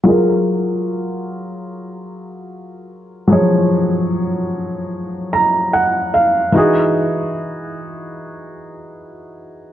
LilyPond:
\new Staff \with { instrumentName = "Felt piano" } { \time 4/4 \key fis \major \tempo 4 = 74 << { r1 | r2 r8 ais''8 fis''8 eis''8 | r1 | } \\ { <fis eis' gis' ais'>1 | <eis fis gis' cis''>1 | <e dis' fis' gis'>1 | } >> }